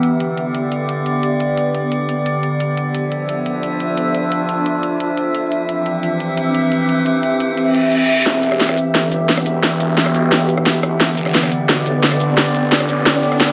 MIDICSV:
0, 0, Header, 1, 7, 480
1, 0, Start_track
1, 0, Tempo, 342857
1, 45, Time_signature, 4, 2, 24, 8
1, 18932, End_track
2, 0, Start_track
2, 0, Title_t, "Ambient pad"
2, 0, Program_c, 0, 92
2, 0, Note_on_c, 0, 59, 77
2, 0, Note_on_c, 0, 67, 66
2, 0, Note_on_c, 0, 76, 75
2, 485, Note_on_c, 0, 74, 86
2, 1325, Note_off_c, 0, 76, 0
2, 3884, Note_on_c, 0, 62, 67
2, 4015, Note_on_c, 0, 76, 83
2, 4171, Note_on_c, 0, 65, 78
2, 4497, Note_off_c, 0, 67, 0
2, 4927, Note_off_c, 0, 74, 0
2, 5421, Note_off_c, 0, 59, 0
2, 7724, Note_on_c, 0, 60, 85
2, 7725, Note_off_c, 0, 65, 0
2, 8067, Note_on_c, 0, 67, 84
2, 9261, Note_off_c, 0, 62, 0
2, 11565, Note_off_c, 0, 60, 0
2, 11565, Note_on_c, 0, 59, 69
2, 15966, Note_on_c, 0, 74, 82
2, 16050, Note_off_c, 0, 76, 0
2, 18932, Note_off_c, 0, 59, 0
2, 18932, Note_off_c, 0, 67, 0
2, 18932, Note_off_c, 0, 74, 0
2, 18932, End_track
3, 0, Start_track
3, 0, Title_t, "Synth drone"
3, 0, Program_c, 1, 95
3, 0, Note_on_c, 1, 59, 70
3, 0, Note_on_c, 1, 67, 70
3, 45, Note_on_c, 1, 50, 80
3, 45, Note_on_c, 1, 74, 83
3, 3829, Note_off_c, 1, 59, 0
3, 3829, Note_off_c, 1, 67, 0
3, 3847, Note_off_c, 1, 50, 0
3, 3847, Note_off_c, 1, 74, 0
3, 3885, Note_on_c, 1, 53, 78
3, 3885, Note_on_c, 1, 62, 70
3, 3885, Note_on_c, 1, 69, 71
3, 3885, Note_on_c, 1, 76, 86
3, 7687, Note_off_c, 1, 53, 0
3, 7687, Note_off_c, 1, 62, 0
3, 7687, Note_off_c, 1, 69, 0
3, 7687, Note_off_c, 1, 76, 0
3, 7724, Note_on_c, 1, 52, 76
3, 7724, Note_on_c, 1, 60, 72
3, 7725, Note_on_c, 1, 67, 71
3, 7725, Note_on_c, 1, 76, 86
3, 11526, Note_off_c, 1, 52, 0
3, 11526, Note_off_c, 1, 60, 0
3, 11526, Note_off_c, 1, 67, 0
3, 11526, Note_off_c, 1, 76, 0
3, 11565, Note_on_c, 1, 52, 77
3, 11565, Note_on_c, 1, 59, 68
3, 11565, Note_on_c, 1, 67, 71
3, 11565, Note_on_c, 1, 76, 90
3, 15367, Note_off_c, 1, 52, 0
3, 15367, Note_off_c, 1, 76, 0
3, 15405, Note_on_c, 1, 50, 79
3, 15405, Note_on_c, 1, 74, 85
3, 18932, Note_off_c, 1, 50, 0
3, 18932, Note_off_c, 1, 59, 0
3, 18932, Note_off_c, 1, 67, 0
3, 18932, Note_off_c, 1, 74, 0
3, 18932, End_track
4, 0, Start_track
4, 0, Title_t, "Detuned saw bass"
4, 0, Program_c, 2, 39
4, 11565, Note_on_c, 2, 28, 99
4, 12266, Note_off_c, 2, 28, 0
4, 12525, Note_on_c, 2, 31, 94
4, 13226, Note_off_c, 2, 31, 0
4, 13245, Note_on_c, 2, 28, 93
4, 13466, Note_off_c, 2, 28, 0
4, 13485, Note_on_c, 2, 28, 98
4, 14186, Note_off_c, 2, 28, 0
4, 14205, Note_on_c, 2, 35, 99
4, 15386, Note_off_c, 2, 35, 0
4, 15404, Note_on_c, 2, 31, 98
4, 16106, Note_off_c, 2, 31, 0
4, 16365, Note_on_c, 2, 35, 97
4, 17066, Note_off_c, 2, 35, 0
4, 17084, Note_on_c, 2, 31, 99
4, 17306, Note_off_c, 2, 31, 0
4, 17324, Note_on_c, 2, 31, 97
4, 18025, Note_off_c, 2, 31, 0
4, 18045, Note_on_c, 2, 33, 94
4, 18746, Note_off_c, 2, 33, 0
4, 18765, Note_on_c, 2, 38, 92
4, 18932, Note_off_c, 2, 38, 0
4, 18932, End_track
5, 0, Start_track
5, 0, Title_t, "Reverse cymbal"
5, 0, Program_c, 3, 119
5, 10604, Note_on_c, 3, 60, 74
5, 11565, Note_off_c, 3, 60, 0
5, 18932, End_track
6, 0, Start_track
6, 0, Title_t, "Riser"
6, 0, Program_c, 4, 103
6, 11564, Note_on_c, 4, 60, 80
6, 18932, Note_off_c, 4, 60, 0
6, 18932, End_track
7, 0, Start_track
7, 0, Title_t, "Drums"
7, 45, Note_on_c, 9, 42, 73
7, 185, Note_off_c, 9, 42, 0
7, 285, Note_on_c, 9, 42, 84
7, 425, Note_off_c, 9, 42, 0
7, 525, Note_on_c, 9, 42, 73
7, 665, Note_off_c, 9, 42, 0
7, 765, Note_on_c, 9, 42, 83
7, 905, Note_off_c, 9, 42, 0
7, 1005, Note_on_c, 9, 42, 76
7, 1145, Note_off_c, 9, 42, 0
7, 1245, Note_on_c, 9, 42, 85
7, 1385, Note_off_c, 9, 42, 0
7, 1485, Note_on_c, 9, 42, 74
7, 1625, Note_off_c, 9, 42, 0
7, 1725, Note_on_c, 9, 42, 84
7, 1865, Note_off_c, 9, 42, 0
7, 1965, Note_on_c, 9, 42, 71
7, 2105, Note_off_c, 9, 42, 0
7, 2205, Note_on_c, 9, 42, 85
7, 2345, Note_off_c, 9, 42, 0
7, 2445, Note_on_c, 9, 42, 70
7, 2585, Note_off_c, 9, 42, 0
7, 2685, Note_on_c, 9, 42, 80
7, 2825, Note_off_c, 9, 42, 0
7, 2925, Note_on_c, 9, 42, 73
7, 3065, Note_off_c, 9, 42, 0
7, 3165, Note_on_c, 9, 42, 85
7, 3305, Note_off_c, 9, 42, 0
7, 3405, Note_on_c, 9, 42, 71
7, 3545, Note_off_c, 9, 42, 0
7, 3645, Note_on_c, 9, 42, 82
7, 3785, Note_off_c, 9, 42, 0
7, 3885, Note_on_c, 9, 42, 73
7, 4025, Note_off_c, 9, 42, 0
7, 4125, Note_on_c, 9, 42, 88
7, 4265, Note_off_c, 9, 42, 0
7, 4365, Note_on_c, 9, 42, 70
7, 4505, Note_off_c, 9, 42, 0
7, 4605, Note_on_c, 9, 42, 86
7, 4745, Note_off_c, 9, 42, 0
7, 4845, Note_on_c, 9, 42, 74
7, 4985, Note_off_c, 9, 42, 0
7, 5085, Note_on_c, 9, 42, 86
7, 5225, Note_off_c, 9, 42, 0
7, 5325, Note_on_c, 9, 42, 73
7, 5465, Note_off_c, 9, 42, 0
7, 5565, Note_on_c, 9, 42, 85
7, 5705, Note_off_c, 9, 42, 0
7, 5805, Note_on_c, 9, 42, 74
7, 5945, Note_off_c, 9, 42, 0
7, 6045, Note_on_c, 9, 42, 91
7, 6185, Note_off_c, 9, 42, 0
7, 6285, Note_on_c, 9, 42, 74
7, 6425, Note_off_c, 9, 42, 0
7, 6525, Note_on_c, 9, 42, 83
7, 6665, Note_off_c, 9, 42, 0
7, 6765, Note_on_c, 9, 42, 76
7, 6905, Note_off_c, 9, 42, 0
7, 7005, Note_on_c, 9, 42, 89
7, 7145, Note_off_c, 9, 42, 0
7, 7245, Note_on_c, 9, 42, 77
7, 7385, Note_off_c, 9, 42, 0
7, 7485, Note_on_c, 9, 42, 83
7, 7625, Note_off_c, 9, 42, 0
7, 7725, Note_on_c, 9, 42, 76
7, 7865, Note_off_c, 9, 42, 0
7, 7965, Note_on_c, 9, 42, 92
7, 8105, Note_off_c, 9, 42, 0
7, 8205, Note_on_c, 9, 42, 78
7, 8345, Note_off_c, 9, 42, 0
7, 8445, Note_on_c, 9, 42, 90
7, 8585, Note_off_c, 9, 42, 0
7, 8685, Note_on_c, 9, 42, 80
7, 8825, Note_off_c, 9, 42, 0
7, 8925, Note_on_c, 9, 42, 95
7, 9065, Note_off_c, 9, 42, 0
7, 9165, Note_on_c, 9, 42, 83
7, 9305, Note_off_c, 9, 42, 0
7, 9405, Note_on_c, 9, 42, 92
7, 9545, Note_off_c, 9, 42, 0
7, 9645, Note_on_c, 9, 42, 82
7, 9785, Note_off_c, 9, 42, 0
7, 9885, Note_on_c, 9, 42, 94
7, 10025, Note_off_c, 9, 42, 0
7, 10125, Note_on_c, 9, 42, 78
7, 10265, Note_off_c, 9, 42, 0
7, 10365, Note_on_c, 9, 42, 93
7, 10505, Note_off_c, 9, 42, 0
7, 10605, Note_on_c, 9, 42, 79
7, 10745, Note_off_c, 9, 42, 0
7, 10845, Note_on_c, 9, 42, 94
7, 10985, Note_off_c, 9, 42, 0
7, 11085, Note_on_c, 9, 42, 81
7, 11225, Note_off_c, 9, 42, 0
7, 11325, Note_on_c, 9, 42, 93
7, 11465, Note_off_c, 9, 42, 0
7, 11565, Note_on_c, 9, 38, 47
7, 11565, Note_on_c, 9, 42, 82
7, 11705, Note_off_c, 9, 38, 0
7, 11705, Note_off_c, 9, 42, 0
7, 11805, Note_on_c, 9, 42, 93
7, 11805, Note_on_c, 9, 69, 60
7, 11925, Note_on_c, 9, 37, 35
7, 11945, Note_off_c, 9, 42, 0
7, 11945, Note_off_c, 9, 69, 0
7, 12045, Note_on_c, 9, 38, 48
7, 12045, Note_on_c, 9, 42, 76
7, 12065, Note_off_c, 9, 37, 0
7, 12165, Note_on_c, 9, 37, 36
7, 12185, Note_off_c, 9, 38, 0
7, 12185, Note_off_c, 9, 42, 0
7, 12285, Note_on_c, 9, 42, 94
7, 12285, Note_on_c, 9, 69, 57
7, 12305, Note_off_c, 9, 37, 0
7, 12425, Note_off_c, 9, 42, 0
7, 12425, Note_off_c, 9, 69, 0
7, 12525, Note_on_c, 9, 38, 48
7, 12525, Note_on_c, 9, 42, 82
7, 12665, Note_off_c, 9, 38, 0
7, 12665, Note_off_c, 9, 42, 0
7, 12765, Note_on_c, 9, 42, 98
7, 12765, Note_on_c, 9, 69, 58
7, 12905, Note_off_c, 9, 42, 0
7, 12905, Note_off_c, 9, 69, 0
7, 13005, Note_on_c, 9, 38, 52
7, 13005, Note_on_c, 9, 42, 81
7, 13125, Note_on_c, 9, 37, 38
7, 13145, Note_off_c, 9, 38, 0
7, 13145, Note_off_c, 9, 42, 0
7, 13245, Note_on_c, 9, 42, 92
7, 13245, Note_on_c, 9, 69, 57
7, 13265, Note_off_c, 9, 37, 0
7, 13385, Note_off_c, 9, 42, 0
7, 13385, Note_off_c, 9, 69, 0
7, 13485, Note_on_c, 9, 38, 52
7, 13485, Note_on_c, 9, 42, 78
7, 13625, Note_off_c, 9, 38, 0
7, 13625, Note_off_c, 9, 42, 0
7, 13725, Note_on_c, 9, 42, 91
7, 13725, Note_on_c, 9, 69, 56
7, 13865, Note_off_c, 9, 42, 0
7, 13865, Note_off_c, 9, 69, 0
7, 13965, Note_on_c, 9, 38, 52
7, 13965, Note_on_c, 9, 42, 75
7, 14085, Note_on_c, 9, 37, 36
7, 14105, Note_off_c, 9, 38, 0
7, 14105, Note_off_c, 9, 42, 0
7, 14205, Note_on_c, 9, 42, 91
7, 14205, Note_on_c, 9, 69, 56
7, 14225, Note_off_c, 9, 37, 0
7, 14345, Note_off_c, 9, 42, 0
7, 14345, Note_off_c, 9, 69, 0
7, 14445, Note_on_c, 9, 38, 54
7, 14445, Note_on_c, 9, 42, 81
7, 14585, Note_off_c, 9, 38, 0
7, 14585, Note_off_c, 9, 42, 0
7, 14685, Note_on_c, 9, 42, 93
7, 14685, Note_on_c, 9, 69, 59
7, 14805, Note_on_c, 9, 37, 34
7, 14825, Note_off_c, 9, 42, 0
7, 14825, Note_off_c, 9, 69, 0
7, 14925, Note_on_c, 9, 38, 59
7, 14925, Note_on_c, 9, 42, 80
7, 14945, Note_off_c, 9, 37, 0
7, 15065, Note_off_c, 9, 38, 0
7, 15065, Note_off_c, 9, 42, 0
7, 15165, Note_on_c, 9, 37, 47
7, 15165, Note_on_c, 9, 42, 91
7, 15165, Note_on_c, 9, 69, 56
7, 15305, Note_off_c, 9, 37, 0
7, 15305, Note_off_c, 9, 42, 0
7, 15305, Note_off_c, 9, 69, 0
7, 15405, Note_on_c, 9, 38, 58
7, 15405, Note_on_c, 9, 42, 75
7, 15545, Note_off_c, 9, 38, 0
7, 15545, Note_off_c, 9, 42, 0
7, 15645, Note_on_c, 9, 42, 92
7, 15645, Note_on_c, 9, 69, 54
7, 15765, Note_on_c, 9, 37, 34
7, 15785, Note_off_c, 9, 42, 0
7, 15785, Note_off_c, 9, 69, 0
7, 15885, Note_on_c, 9, 38, 58
7, 15885, Note_on_c, 9, 42, 74
7, 15905, Note_off_c, 9, 37, 0
7, 16005, Note_on_c, 9, 37, 34
7, 16025, Note_off_c, 9, 38, 0
7, 16025, Note_off_c, 9, 42, 0
7, 16125, Note_on_c, 9, 42, 93
7, 16125, Note_on_c, 9, 69, 54
7, 16145, Note_off_c, 9, 37, 0
7, 16265, Note_off_c, 9, 42, 0
7, 16265, Note_off_c, 9, 69, 0
7, 16365, Note_on_c, 9, 38, 62
7, 16365, Note_on_c, 9, 42, 78
7, 16505, Note_off_c, 9, 38, 0
7, 16505, Note_off_c, 9, 42, 0
7, 16605, Note_on_c, 9, 42, 91
7, 16605, Note_on_c, 9, 69, 55
7, 16745, Note_off_c, 9, 42, 0
7, 16745, Note_off_c, 9, 69, 0
7, 16845, Note_on_c, 9, 38, 66
7, 16845, Note_on_c, 9, 42, 77
7, 16965, Note_on_c, 9, 37, 36
7, 16985, Note_off_c, 9, 38, 0
7, 16985, Note_off_c, 9, 42, 0
7, 17085, Note_on_c, 9, 42, 87
7, 17085, Note_on_c, 9, 69, 58
7, 17105, Note_off_c, 9, 37, 0
7, 17225, Note_off_c, 9, 42, 0
7, 17225, Note_off_c, 9, 69, 0
7, 17325, Note_on_c, 9, 38, 66
7, 17325, Note_on_c, 9, 42, 74
7, 17465, Note_off_c, 9, 38, 0
7, 17465, Note_off_c, 9, 42, 0
7, 17565, Note_on_c, 9, 42, 87
7, 17565, Note_on_c, 9, 69, 56
7, 17705, Note_off_c, 9, 42, 0
7, 17705, Note_off_c, 9, 69, 0
7, 17805, Note_on_c, 9, 38, 65
7, 17805, Note_on_c, 9, 42, 73
7, 17925, Note_on_c, 9, 37, 35
7, 17945, Note_off_c, 9, 38, 0
7, 17945, Note_off_c, 9, 42, 0
7, 18045, Note_on_c, 9, 42, 85
7, 18045, Note_on_c, 9, 69, 57
7, 18065, Note_off_c, 9, 37, 0
7, 18185, Note_off_c, 9, 42, 0
7, 18185, Note_off_c, 9, 69, 0
7, 18285, Note_on_c, 9, 38, 69
7, 18285, Note_on_c, 9, 42, 75
7, 18425, Note_off_c, 9, 38, 0
7, 18425, Note_off_c, 9, 42, 0
7, 18525, Note_on_c, 9, 42, 87
7, 18525, Note_on_c, 9, 69, 58
7, 18645, Note_off_c, 9, 69, 0
7, 18645, Note_on_c, 9, 37, 32
7, 18645, Note_on_c, 9, 69, 26
7, 18665, Note_off_c, 9, 42, 0
7, 18765, Note_on_c, 9, 38, 72
7, 18765, Note_on_c, 9, 42, 74
7, 18785, Note_off_c, 9, 37, 0
7, 18785, Note_off_c, 9, 69, 0
7, 18905, Note_off_c, 9, 38, 0
7, 18905, Note_off_c, 9, 42, 0
7, 18932, End_track
0, 0, End_of_file